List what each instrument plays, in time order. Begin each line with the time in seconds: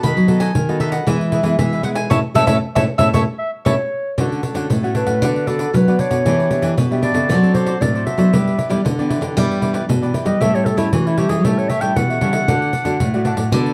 Already playing: nylon-string guitar B3 F#4 A4
0.03 nylon-string guitar D#3, cavaquinho D#4 A4 B4 D#5, mandolin B5, pandeiro
0.17 nylon-string guitar F#3, pandeiro
0.27 nylon-string guitar B3 F#4 A4, cavaquinho D#4 A4 B4 D#5, pandeiro
0.40 cavaquinho D#4 A4 B4 D#5, mandolin G#5, pandeiro
0.54 nylon-string guitar D#3, pandeiro
0.68 nylon-string guitar B3 F#4 A4, cavaquinho A4 B4 D#5, pandeiro
0.80 cavaquinho D#4 A4 B4 D#5, mandolin E5, pandeiro
0.92 cavaquinho A4 B4 D#5, mandolin F#5, pandeiro
1.06 nylon-string guitar E3 G#3 B3 E4, cavaquinho E4 G#4 B4 E5, mandolin E5, pandeiro
1.21 pandeiro
1.32 cavaquinho E4 G#4 B4 E5, pandeiro
1.43 nylon-string guitar E3 G#3 B3 E4, cavaquinho E4 G#4 B4 E5, pandeiro
1.58 nylon-string guitar B2 E3, mandolin E5, pandeiro
1.73 cavaquinho G#4 B4 E5, pandeiro
1.83 nylon-string guitar G#3 B3 E4, cavaquinho E4 G#4 B4 E5, mandolin F#5, pandeiro
1.95 cavaquinho G#4 B4 E5, mandolin G#5, pandeiro
2.10 nylon-string guitar A2 A3 C#4 E4, cavaquinho E4 A4 C#5, mandolin C#5 E5 A5, pandeiro
2.34 nylon-string guitar A2 A3 C#4 E4, cavaquinho E4 A4 C#5, mandolin C#5 E5 A5, pandeiro
2.47 nylon-string guitar A2 A3 C#4 E4, cavaquinho E4 A4 C#5, mandolin C#5 E5 A5, pandeiro
2.75 nylon-string guitar A2 A3 C#4 E4, cavaquinho E4 A4 C#5, mandolin C#5 E5 A5, pandeiro
2.98 nylon-string guitar A2 A3 C#4 E4, cavaquinho E4 A4 C#5, mandolin C#5 E5 A5, pandeiro
3.14 nylon-string guitar A2 A3 C#4 E4, cavaquinho E4 A4 C#5, mandolin C#5 E5 A5, pandeiro
3.38 clarinet E5
3.65 nylon-string guitar A2 A3 C#4 E4, cavaquinho E4 A4 C#5, mandolin C#5 E5 A5, clarinet C#5, pandeiro
4.18 nylon-string guitar D3 A3 C#4 F#4, cavaquinho D4 A4 C#5 F#5, pandeiro
4.32 pandeiro
4.43 cavaquinho D4 A4 C#5 F#5, pandeiro
4.54 nylon-string guitar D3 A3 C#4 F#4, cavaquinho D4 A4 C#5 F#5, pandeiro
4.69 nylon-string guitar A2, pandeiro
4.83 nylon-string guitar A3 C#4 F#4, cavaquinho A4 C#5 F#5, pandeiro
4.95 cavaquinho D4 A4 C#5 F#5, clarinet B4, pandeiro
5.06 nylon-string guitar A2, cavaquinho A4 C#5 F#5, pandeiro
5.21 nylon-string guitar D3 B3 D4 F#4, cavaquinho D4 B4 D5 F#5, pandeiro
5.36 pandeiro
5.46 nylon-string guitar B3 D4 F#4, cavaquinho D4 B4 D5 F#5, clarinet A4, pandeiro
5.59 cavaquinho D4 B4 D5 F#5, pandeiro
5.73 nylon-string guitar D3 F#3, clarinet B4, pandeiro
5.87 nylon-string guitar B3 D4 F#4, cavaquinho B4 D5 F#5, pandeiro
5.99 cavaquinho D4 B4 D5 F#5, clarinet C#5, pandeiro
6.10 nylon-string guitar B2, cavaquinho B4 D5 F#5, pandeiro
6.25 nylon-string guitar E3 B3 D4 G4, cavaquinho D4 G4 B4 E5, pandeiro
6.40 pandeiro
6.50 nylon-string guitar B3 D4 G4, cavaquinho D4 G4 B4 E5, pandeiro
6.62 nylon-string guitar E3, cavaquinho D4 G4 B4 E5, pandeiro
6.77 nylon-string guitar B2, pandeiro
6.90 nylon-string guitar B3 D4 G4, cavaquinho G4 B4 E5, pandeiro
7.02 cavaquinho D4 G4 B4 E5, clarinet D5, pandeiro
7.14 nylon-string guitar C#3 C4 D4 A4, cavaquinho G4 B4 E5, pandeiro
7.29 nylon-string guitar F#3, cavaquinho F#4 A4 C5 D5, pandeiro
7.42 nylon-string guitar C4 D4 A4, pandeiro
7.54 cavaquinho F#4 A4 C5 D5, clarinet C5, pandeiro
7.66 cavaquinho F#4 A4 C5 D5, pandeiro
7.80 nylon-string guitar A2 F#3 C4 D4 A4, clarinet D5, pandeiro
7.95 cavaquinho A4 C5 D5, pandeiro
8.06 cavaquinho F#4 A4 C5 D5, clarinet E5, pandeiro
8.17 nylon-string guitar E3 F#3 B3 D4, cavaquinho A4 C5 D5, pandeiro
8.33 nylon-string guitar G2 G3, cavaquinho E4 G4 B4 D5, pandeiro
8.47 pandeiro
8.58 cavaquinho E4 G4 B4 D5, pandeiro
8.69 nylon-string guitar E3 G3 B3 D4, cavaquinho E4 G4 B4 D5, pandeiro
8.84 nylon-string guitar D3, pandeiro
8.98 nylon-string guitar E3 B3 D4, cavaquinho G4 B4 D5, pandeiro
9.09 cavaquinho E4 G4 B4 D5, pandeiro
9.21 nylon-string guitar D3, cavaquinho G4 B4 D5, pandeiro
9.37 nylon-string guitar G2 E3 G3 B3 D4, cavaquinho E4 G4 B4 D5, pandeiro
9.51 pandeiro
9.61 nylon-string guitar E3 B3 D4, cavaquinho E4 G4 B4 D5, pandeiro
9.74 cavaquinho E4 G4 B4 D5, pandeiro
9.88 nylon-string guitar G2 B2, pandeiro
10.02 nylon-string guitar E3 B3 D4, cavaquinho G4 B4 D5, pandeiro
10.13 cavaquinho E4 G4 B4 D5, pandeiro
10.25 nylon-string guitar G3, cavaquinho G4 B4 D5, clarinet D#5, pandeiro
10.40 nylon-string guitar A2 G3 A3 C#4 E4, cavaquinho G4 A4 C#5 E5, clarinet E5, pandeiro
10.54 nylon-string guitar G3 C#4 E4, clarinet C#5, pandeiro
10.65 cavaquinho G4 A4 C#5 E5, clarinet A4, pandeiro
10.77 nylon-string guitar G3 A3 C#4 E4, clarinet E4, cavaquinho G4 A4 C#5 E5, pandeiro
10.92 nylon-string guitar E3, clarinet F#4, pandeiro
11.07 clarinet E4, cavaquinho A4 C#5 E5, pandeiro
11.17 nylon-string guitar G3 C#4 E4, cavaquinho G4 A4 C#5 E5, clarinet G4, pandeiro
11.29 nylon-string guitar E3, clarinet G#4, cavaquinho A4 C#5 E5, pandeiro
11.44 nylon-string guitar A2 G3 A3 C#4 E4, cavaquinho G4 A4 C#5 E5, clarinet A4, pandeiro
11.58 clarinet C#5, pandeiro
11.69 cavaquinho G4 A4 C#5 E5, clarinet E5, pandeiro
11.81 nylon-string guitar G3 C#4 E4, cavaquinho G4 A4 C#5 E5, clarinet G5, pandeiro
11.96 nylon-string guitar B2 E3, clarinet F#5, pandeiro
12.10 cavaquinho A4 C#5 E5, pandeiro
12.21 nylon-string guitar C#3 G3 C#4 E4, cavaquinho G4 A4 C#5 E5, pandeiro
12.32 cavaquinho A4 C#5 E5, pandeiro
12.47 nylon-string guitar D3 A3 D4 F#4, cavaquinho D4 A4 D5 F#5, pandeiro
12.62 pandeiro
12.72 cavaquinho D4 A4 D5 F#5, pandeiro
12.85 nylon-string guitar D3 A3 D4 F#4, cavaquinho D4 A4 D5 F#5, pandeiro
13.00 nylon-string guitar A2, pandeiro
13.14 nylon-string guitar A3 D4 F#4, cavaquinho A4 D5 F#5, pandeiro
13.25 cavaquinho D4 A4 D5 F#5, pandeiro
13.36 nylon-string guitar A2, cavaquinho A4 D5 F#5, pandeiro
13.52 nylon-string guitar D3 A3 B3 F#4, cavaquinho D4 A4 B4 D5, pandeiro
13.66 pandeiro